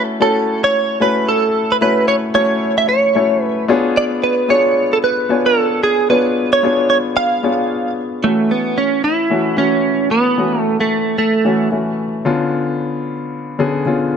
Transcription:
Already playing: grand piano A3 C#4 E4 F#4 C#5
0.20 grand piano A3 C#4 E4 F#4 C#5, clean electric guitar A4
0.64 clean electric guitar C#5
1.00 grand piano A3 C#4 E4 F#4 C#5, clean electric guitar B4
1.29 clean electric guitar A4
1.72 clean electric guitar B4
1.81 grand piano A3 C#4 E4 F#4 C#5, clean electric guitar B4
2.08 clean electric guitar C#5
2.34 grand piano A3 C#4 E4 F#4 C#5, clean electric guitar C#5
2.78 clean electric guitar E5
2.89 clean electric guitar C#5
3.15 grand piano A3 C#4 E4 F#4 C#5
3.44 clean electric guitar B4
3.68 grand piano B3 D4 F4 G#4 C#5
3.97 clean electric guitar D5
4.24 clean electric guitar B4
4.49 grand piano B3 D4 F4 G#4 C#5, clean electric guitar C#5
4.93 clean electric guitar A4
5.04 clean electric guitar B4
5.29 grand piano B3 D4 F4 C#5 G#5
5.46 clean electric guitar A4
5.83 clean electric guitar G#4
6.10 grand piano B3 D4 F4 G#4 C#5, clean electric guitar B4
6.53 clean electric guitar C#5
6.63 grand piano B3 D4 F4 G#4 C#5
6.90 clean electric guitar C#5
7.17 clean electric guitar F5
7.43 grand piano B3 D4 F4 G#4 C#5
8.23 grand piano E3 A3 C#4 F#4, clean electric guitar A3
8.51 clean electric guitar B3
8.78 clean electric guitar C#4
9.04 clean electric guitar E4
9.30 grand piano E3 A3 C#4 F#4
9.57 grand piano E3 A3 C#4 F#4, clean electric guitar C#4
10.11 clean electric guitar B3
10.38 grand piano E3 A3 C#4 F#4
10.60 clean electric guitar A3
10.80 clean electric guitar A3
11.18 clean electric guitar A3
11.45 grand piano E3 A3 C#4 F#4
11.71 grand piano E3 A3 C#4 F#4
12.25 grand piano D3 B3 C#4 F4
13.59 grand piano D3 B3 C#4 G#4
13.86 grand piano D3 B3 C#4 F4

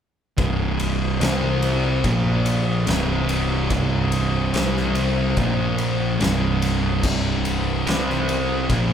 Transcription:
0.38 picked electric bass C1, distorted electric guitar C2 G2 C3, kick, ride
0.80 ride
1.21 picked electric bass C2, distorted electric guitar C3 G3 C4, snare, ride
1.62 ride
2.04 picked electric bass A#1, distorted electric guitar A#2 F3 A#3, kick, ride
2.46 ride
2.87 picked electric bass C1, distorted electric guitar C2 G2 C3, snare, ride
3.29 ride
3.70 picked electric bass C1, distorted electric guitar C2 G2 C3, kick, ride
4.12 ride
4.54 picked electric bass C2, distorted electric guitar C3 G3 C4, snare, ride
4.77 snare
4.95 ride
5.37 picked electric bass A#1, distorted electric guitar A#2 F3 A#3, kick, ride
5.78 ride
6.20 picked electric bass C1, distorted electric guitar C2 G2 C3, snare, ride
6.62 snare, ride
7.03 picked electric bass C1, distorted electric guitar C2 G2 C3, kick, crash
7.45 ride
7.87 picked electric bass C2, distorted electric guitar C3 G3 C4, snare, ride
8.10 snare
8.29 ride
8.69 picked electric bass A#1, distorted electric guitar A#2 F3 A#3, kick, ride

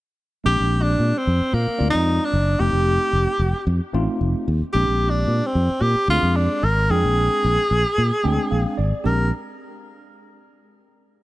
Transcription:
0.44 fingered electric bass A#1, tine electric piano G#3 C4 D4 G4, tenor saxophone G4
0.60 fingered electric bass A#1
0.83 tenor saxophone D4
0.99 fingered electric bass A#2
1.18 tenor saxophone C4
1.27 fingered electric bass F2
1.41 muted fingered electric bass stroke
1.53 fingered electric bass A#2, tenor saxophone A#3
1.68 muted fingered electric bass stroke
1.78 fingered electric bass D2, tine electric piano G#3 C4 F4 D5
1.90 tenor saxophone D#4
1.95 fingered electric bass F2
2.25 tenor saxophone D4
2.33 fingered electric bass F#1
2.59 fingered electric bass F1, tine electric piano A3 C4 D#4 G4, tenor saxophone G4
2.73 fingered electric bass F1
3.13 fingered electric bass F1
3.39 fingered electric bass F1
3.67 fingered electric bass F2
3.93 fingered electric bass A1, tine electric piano A3 C4 D#4 F4
4.21 fingered electric bass F1
4.48 fingered electric bass D#2
4.62 muted fingered electric bass stroke
4.73 fingered electric bass A#1, tine electric piano G#3 C4 D4 G4, tenor saxophone G4
4.88 fingered electric bass A#1
5.10 tenor saxophone D4
5.28 fingered electric bass A#2
5.47 tenor saxophone C4
5.55 fingered electric bass F2
5.70 muted fingered electric bass stroke
5.81 fingered electric bass A#2, tenor saxophone G4
5.95 muted fingered electric bass stroke
6.08 fingered electric bass D2, tine electric piano G#3 C4 D4 G#4, tenor saxophone F4
6.23 fingered electric bass F2
6.37 tenor saxophone D4
6.63 fingered electric bass G#1, tenor saxophone A#4
6.89 fingered electric bass F2, tine electric piano G#3 C4 D4 G5, tenor saxophone G#4
7.04 fingered electric bass A#1
7.44 fingered electric bass A#1
7.71 fingered electric bass A#1
7.98 fingered electric bass A#2
8.23 fingered electric bass D2, tine electric piano G#3 C4 D4 G5 G#5
8.51 fingered electric bass A#1, tine electric piano F5
8.78 fingered electric bass G#1, tine electric piano D5
8.93 muted fingered electric bass stroke
9.04 fingered electric bass A#1, tine electric piano G#3 C4 D4 G4, tenor saxophone A#4

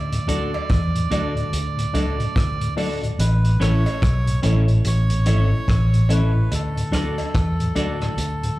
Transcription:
Already playing: fingered electric bass D2, melodica D5
0.11 tonewheel organ D2 A2, closed hi-hat
0.27 fingered electric bass D2, tonewheel organ F#3 A3 D4, clean electric guitar D4 F#4 A4 D5, grand piano D4 F#4 A4 D5, closed hi-hat
0.54 cowbell
0.70 fingered electric bass E2, kick, cross-stick, closed hi-hat
0.93 tonewheel organ D2 A2, closed hi-hat
1.10 fingered electric bass D2, tonewheel organ F#3 A3 D4, clean electric guitar D4 F#4 A4 D5, grand piano D4 F#4 A4 D5, closed hi-hat, cowbell
1.35 tonewheel organ D2 A2, closed hi-hat
1.53 fingered electric bass D2, closed hi-hat
1.77 tonewheel organ D2 A2, closed hi-hat
1.93 fingered electric bass C#2, tonewheel organ F#3 A3 D4, grand piano D4 F#4 A4 D5, clean electric guitar D4 F#4 A4 D5, closed hi-hat, cowbell
2.18 tonewheel organ D2 A2, closed hi-hat
2.36 fingered electric bass D2, kick, cross-stick, closed hi-hat
2.60 tonewheel organ D2 A2, closed hi-hat
2.76 tonewheel organ F#3 A3 D4, grand piano D4 F#4 A4 D5, clean electric guitar D4 F#4 A4 D5, open hi-hat, cowbell
3.03 tonewheel organ D2 A2, closed hi-hat
3.19 fingered electric bass A1, melodica B4, closed hi-hat, cowbell
3.44 tonewheel organ A2, closed hi-hat
3.60 fingered electric bass A1, tonewheel organ E3 A3 C#4, clean electric guitar C#4 E4 A4 C#5, grand piano C#4 E4 A4 C#5, melodica C#5, cross-stick, closed hi-hat
3.86 closed hi-hat, cowbell
4.02 fingered electric bass B1, kick, cross-stick, closed hi-hat
4.27 tonewheel organ A2, closed hi-hat
4.42 fingered electric bass A1, tonewheel organ E3 A3 C#4, grand piano C#4 E4 A4 C#5, clean electric guitar C#4 E4 A4 C#5, closed hi-hat, cowbell
4.68 tonewheel organ A2, closed hi-hat
4.85 fingered electric bass A1, melodica C#5, closed hi-hat
5.10 tonewheel organ A2, closed hi-hat
5.26 fingered electric bass G#1, tonewheel organ E3 A3 C#4, grand piano C#4 E4 A4 C#5, clean electric guitar C#4 E4 A4 C#5, closed hi-hat, cowbell
5.52 tonewheel organ A2
5.68 fingered electric bass A1, kick, cross-stick, closed hi-hat
5.93 tonewheel organ A2, closed hi-hat
6.09 tonewheel organ E3 A3 C#4, grand piano C#4 E4 A4 C#5, clean electric guitar C#4 E4 A4 C#5, melodica B4, closed hi-hat, cowbell
6.35 tonewheel organ A2
6.52 fingered electric bass D2, melodica A4, closed hi-hat, cowbell
6.76 tonewheel organ D2 A2, closed hi-hat
6.91 fingered electric bass D2, tonewheel organ F#3 A3 D4, clean electric guitar D4 F#4 A4 D5, grand piano D4 F#4 A4 D5, cross-stick, closed hi-hat
7.18 closed hi-hat, cowbell
7.34 fingered electric bass E2, kick, cross-stick, closed hi-hat
7.59 tonewheel organ D2 A2, closed hi-hat
7.75 fingered electric bass D2, tonewheel organ F#3 A3 D4, grand piano D4 F#4 A4 D5, clean electric guitar D4 F#4 A4 D5, closed hi-hat, cowbell
8.00 tonewheel organ D2 A2, cross-stick, closed hi-hat
8.18 fingered electric bass D2, closed hi-hat
8.42 tonewheel organ D2 A2, closed hi-hat

